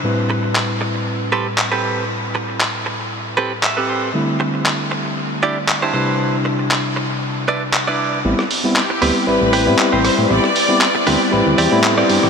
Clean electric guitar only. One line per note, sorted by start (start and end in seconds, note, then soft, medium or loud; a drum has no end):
0.30 muted clean electric guitar stroke medium
0.43 muted clean electric guitar stroke soft
0.81 muted clean electric guitar stroke medium
0.95 muted clean electric guitar stroke soft
1.32 1.46 C4 medium
1.32 1.46 G4 medium
1.32 1.46 A4 medium
1.32 1.46 B4 loud
1.58 muted clean electric guitar stroke soft
1.72 2.03 C4 medium
1.72 2.04 G4 medium
1.72 2.04 A4 medium
1.72 2.04 B4 medium
2.35 muted clean electric guitar stroke medium
2.49 muted clean electric guitar stroke soft
2.86 muted clean electric guitar stroke medium
3.00 muted clean electric guitar stroke soft
3.37 3.51 C4 medium
3.37 3.51 G4 medium
3.37 3.52 A4 medium
3.37 3.52 B4 loud
3.63 3.87 E5 medium
3.63 muted clean electric guitar stroke soft
3.77 4.09 C4 medium
3.77 4.09 G4 medium
3.77 4.09 A4 medium
3.77 4.09 B4 medium
3.89 4.13 C5 medium
4.40 muted clean electric guitar stroke loud
4.54 muted clean electric guitar stroke soft
4.91 muted clean electric guitar stroke medium
5.05 muted clean electric guitar stroke soft
5.43 5.57 D4 medium
5.43 5.57 E4 medium
5.43 5.57 G4 medium
5.43 5.57 D5 loud
5.68 muted clean electric guitar stroke soft
5.82 5.92 D4 medium
5.82 5.93 E4 medium
5.82 5.93 G4 medium
5.82 5.93 C5 medium
5.93 6.36 D4 medium
5.93 6.36 E4 medium
5.93 6.36 B4 medium
5.93 6.36 C5 loud
6.45 muted clean electric guitar stroke loud
6.59 muted clean electric guitar stroke soft
6.96 muted clean electric guitar stroke medium
7.10 muted clean electric guitar stroke soft
7.48 7.62 D4 medium
7.48 7.62 E4 medium
7.48 7.62 B4 medium
7.48 7.62 D5 loud
7.74 muted clean electric guitar stroke soft
7.88 8.19 D4 medium
7.88 8.19 E4 medium
7.88 8.19 B4 medium
7.88 8.19 D5 medium
8.90 muted clean electric guitar stroke medium
9.02 9.16 C4 medium
9.02 9.16 G4 medium
9.02 9.16 B4 loud
9.27 muted clean electric guitar stroke soft
9.53 9.73 C4 medium
9.53 9.73 G4 medium
9.53 9.73 B4 loud
9.92 10.44 C4 medium
9.92 10.44 G4 medium
9.92 10.44 C5 medium
10.95 muted clean electric guitar stroke medium
11.07 11.21 C4 loud
11.07 11.21 G4 medium
11.07 11.21 B4 loud
11.32 muted clean electric guitar stroke soft
11.58 11.78 C4 medium
11.58 11.78 G4 loud
11.58 11.78 D5 loud
11.98 12.30 C4 medium
11.98 12.30 G4 medium
11.98 12.30 D5 medium